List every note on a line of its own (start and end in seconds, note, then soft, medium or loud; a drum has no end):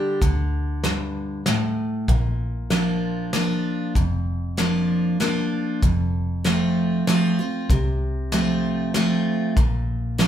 0.00 0.18 D3 loud
0.00 0.19 G3 medium
0.00 0.19 D4 loud
0.00 0.20 G4 loud
0.21 1.88 D2 medium
0.21 1.40 D3 medium
0.21 kick loud
0.21 closed hi-hat medium
0.84 1.43 G2 medium
0.84 snare medium
0.84 closed hi-hat medium
1.46 2.06 A2 loud
1.46 snare medium
1.46 closed hi-hat medium
2.08 3.75 A#1 medium
2.08 3.27 A#2 medium
2.08 kick loud
2.08 closed hi-hat medium
2.70 3.30 F3 medium
2.70 3.30 A#3 medium
2.70 3.31 D4 medium
2.70 3.31 F4 medium
2.70 snare medium
2.70 closed hi-hat medium
3.33 3.92 F3 medium
3.33 3.93 A#3 medium
3.33 3.93 D4 medium
3.33 3.94 F4 medium
3.33 snare medium
3.33 closed hi-hat medium
3.95 5.62 F1 medium
3.95 5.15 F2 medium
3.95 kick loud
3.95 closed hi-hat medium
4.57 5.17 F3 medium
4.57 5.17 A#3 loud
4.57 5.18 D4 medium
4.57 5.18 F4 medium
4.57 snare medium
5.20 5.79 F3 medium
5.20 5.80 A#3 medium
5.20 5.80 D4 loud
5.20 5.81 F4 medium
5.20 snare medium
5.20 closed hi-hat medium
5.83 7.50 F1 medium
5.83 7.02 F2 medium
5.83 kick loud
5.83 closed hi-hat medium
6.44 7.04 F3 medium
6.44 7.05 A3 medium
6.44 7.05 C4 medium
6.44 7.05 F4 medium
6.44 snare medium
6.44 closed hi-hat medium
7.07 7.37 F3 medium
7.07 7.38 A3 medium
7.07 7.38 C4 loud
7.07 7.38 F4 loud
7.07 snare medium
7.07 closed hi-hat medium
7.39 7.70 C4 soft
7.39 7.69 F4 medium
7.70 9.37 C2 medium
7.70 8.89 C3 medium
7.70 kick loud
7.70 closed hi-hat medium
8.32 8.92 F3 medium
8.32 8.92 A3 medium
8.32 8.92 C4 medium
8.32 8.93 F4 medium
8.32 snare medium
8.32 closed hi-hat medium
8.94 9.54 F3 medium
8.94 9.55 A3 medium
8.94 9.55 C4 medium
8.94 9.55 F4 loud
8.94 snare medium
8.94 closed hi-hat medium
9.57 10.28 A#1 medium
9.57 10.28 A#2 medium
9.57 kick loud
9.57 closed hi-hat medium
10.18 10.28 F3 medium
10.18 10.28 A#3 medium
10.18 10.28 D4 medium
10.18 10.28 F4 medium
10.18 snare medium
10.18 closed hi-hat medium